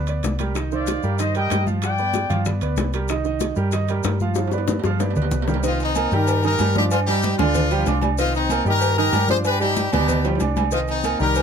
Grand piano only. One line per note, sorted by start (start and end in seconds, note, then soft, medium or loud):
0.09 0.34 B3 medium
0.09 0.34 B4 medium
0.09 0.34 D5 medium
0.40 0.53 G3 medium
0.40 0.53 G4 medium
0.40 0.53 A#4 medium
0.55 0.68 D#3 medium
0.55 0.68 D#4 medium
0.55 0.68 D#5 medium
0.72 0.98 D#3 medium
0.72 0.98 D#4 medium
0.72 0.98 C5 medium
1.03 1.16 G3 medium
1.03 1.17 G4 medium
1.03 1.17 A#4 medium
1.19 1.32 D#3 medium
1.19 1.32 D#4 medium
1.19 1.33 D#5 medium
1.35 1.61 G3 medium
1.35 1.61 G4 medium
1.35 1.62 A#4 medium
1.66 1.92 F3 medium
1.66 1.93 F4 medium
1.66 1.93 F5 medium
1.99 2.25 B3 medium
1.99 2.25 B4 medium
1.99 2.25 D5 medium
2.29 2.43 F3 medium
2.29 2.43 F4 medium
2.29 2.43 F5 medium
2.46 2.59 B3 medium
2.46 2.59 B4 medium
2.46 2.59 D5 medium
2.62 2.88 B3 medium
2.62 2.88 B4 medium
2.62 2.89 D5 medium
2.94 3.07 G3 medium
2.94 3.07 G4 medium
2.94 3.07 A#4 medium
3.10 3.23 D#3 medium
3.10 3.23 D#4 medium
3.10 3.23 D#5 medium
3.25 3.51 D#3 medium
3.25 3.51 D#4 medium
3.25 3.52 D#5 medium
3.56 3.70 G3 medium
3.56 3.70 G4 medium
3.56 3.70 A#4 medium
3.73 3.86 D#3 medium
3.73 3.86 D#4 medium
3.73 3.86 D#5 medium
3.89 4.15 G3 medium
3.89 4.16 G4 medium
3.89 4.16 A#4 medium
4.22 4.48 F3 medium
4.22 4.47 F4 medium
4.22 4.48 F5 medium
4.53 4.79 B3 medium
4.53 4.79 B4 medium
4.53 4.79 D5 medium
4.84 4.97 F3 medium
4.84 4.98 F4 medium
4.84 4.98 F5 medium
5.01 5.14 B3 medium
5.01 5.14 B4 medium
5.01 5.14 D5 medium
5.16 5.42 B3 medium
5.16 5.43 B4 medium
5.16 5.43 D5 medium
5.47 5.61 G3 medium
5.47 5.61 G4 medium
5.47 5.61 A#4 medium
5.63 5.90 D#3 medium
5.63 5.90 D#4 medium
5.63 5.90 D#5 medium
5.96 6.09 A#3 medium
5.96 6.10 A#4 medium
5.96 6.09 A#5 medium
6.13 6.39 G3 medium
6.13 6.38 G4 medium
6.13 6.39 G5 medium
6.45 6.57 D#3 loud
6.45 6.57 D#4 medium
6.45 6.57 D#5 medium
6.61 6.73 G3 medium
6.61 6.74 G4 medium
6.61 6.74 G5 medium
6.77 7.02 D4 medium
6.77 7.02 D5 medium
6.77 7.03 D6 medium
7.09 7.34 G3 medium
7.09 7.34 G4 medium
7.09 7.34 G5 medium
7.40 7.65 D3 medium
7.40 7.65 D4 loud
7.40 7.66 D5 medium
7.71 7.84 G3 medium
7.71 7.84 G4 medium
7.71 7.84 G5 medium
7.87 8.13 D4 medium
7.87 8.13 D5 medium
7.87 8.13 D6 medium
8.19 8.45 D#3 medium
8.19 8.45 D#4 medium
8.19 8.45 D#5 medium
8.51 8.64 A#3 medium
8.51 8.64 A#4 medium
8.51 8.64 A#5 medium
8.66 8.92 G3 medium
8.66 8.92 G4 medium
8.66 8.92 G5 medium
8.98 9.11 D#3 medium
8.98 9.11 D#4 medium
8.98 9.11 D#5 loud
9.14 9.27 G3 medium
9.14 9.27 G4 medium
9.14 9.27 G5 medium
9.29 9.55 D4 medium
9.29 9.55 D5 medium
9.29 9.56 D6 medium
9.62 9.88 G3 medium
9.62 9.87 G4 medium
9.62 9.87 G5 medium
9.93 10.19 B2 loud
9.93 10.19 B3 medium
9.93 10.19 D5 loud
10.25 10.38 G3 medium
10.25 10.38 G4 medium
10.25 10.38 G5 medium
10.40 10.66 D4 medium
10.40 10.67 D5 medium
10.40 10.67 D6 medium
10.72 10.98 D#3 medium
10.72 10.98 D#4 medium
10.72 10.98 D#5 medium
11.05 11.17 A#3 medium
11.05 11.18 A#4 medium
11.05 11.18 A#5 medium
11.21 11.42 G3 medium
11.21 11.42 G4 medium
11.21 11.42 G5 medium